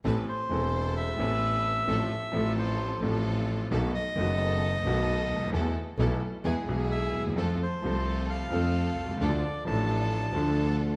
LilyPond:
<<
  \new Staff \with { instrumentName = "Bandoneon" } { \time 4/4 \key a \minor \tempo 4 = 131 r8 c''4. e''2~ | e''4. c''4 r4. | r8 dis''2.~ dis''8 | r2. e''8. r16 |
r8 c''4. f''2 | d''4 a''2~ a''8 r8 | }
  \new Staff \with { instrumentName = "String section" } { \time 4/4 \key a \minor <c' a' b'>8 r8 <a' c''>4. <a' b'>4. | <c' f' a'>8 r8 <c' f' a'>4. <c' f' a'>4. | <b dis' a'>8 r8 <b dis' a'>4. <b dis' a'>4. | <b e' a'>8 r8 <b e' a'>8 r8 <b e' gis'>8 <b e' gis'>4. |
<c' f' a'>8 r8 <c' f' a'>4. <c' f' a'>4. | <d' f' a'>8 r8 <d' f' a'>4. <d' f' a'>4. | }
  \new Staff \with { instrumentName = "Grand piano" } { \clef bass \time 4/4 \key a \minor << { <a,, a, e b c' a'>8 r8 <e,, e, e a c' a'>4. <a,, a, e b c' a'>4. | <a,, a, f a c' a'>8 r8 <a,, a, f a c' a'>4. <a,, a, f a c' a'>4. | <b,, b, dis a b fis'>8 r8 <fis,, fis, dis a b fis'>4. <b,, b, dis a b fis'>4. | <e, e a b a'>8 r8 <b,, b, e a b a'>8 r8 <e, e gis b gis'>8 <b,, b, e gis b gis'>4. |
<f, f a c' a'>8 r8 <c, c f a c' a'>4. <f, f a c' a'>4. | <d, d f a d' a'>8 r8 <a,, a, f a d' a'>4. <d, d f a d' a'>4. | } \\ { r1 | r1 | r2. r8 r32 cis,32 d,32 dis,32 | r2. r8 r32 d,32 dis,32 e,32 |
r2. r8 r32 b,,32 c,32 cis,32 | r1 | } >> }
  \new Staff \with { instrumentName = "Double bass" } { \clef bass \time 4/4 \key a \minor a,,8 r8 e,,4. a,,4. | a,,8 r8 a,,4. a,,4. | b,,8 r8 fis,,4. b,,4 d,8 | e,8 r8 b,,8 r8 e,8 b,,4 dis,8 |
f,8 r8 c,4. f,4 c,8 | d,8 r8 a,,4. d,4. | }
>>